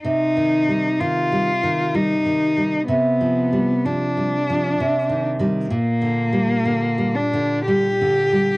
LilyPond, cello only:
\new Staff \with { instrumentName = "Cello" } { \time 3/4 \key c \minor \tempo 4 = 63 ees'4 f'4 ees'4 | b4 d'4. r8 | bes4. d'8 g'4 | }